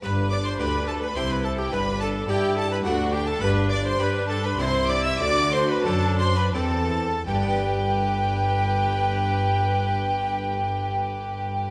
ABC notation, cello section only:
X:1
M:3/4
L:1/8
Q:1/4=95
K:G
V:1 name="Cello section" clef=bass
G,,2 D,,2 C,2 | G,,2 G,2 D,,2 | G,,2 G,2 C,2 | D,2 F,2 E,2 |
G,,6- | G,,6 |]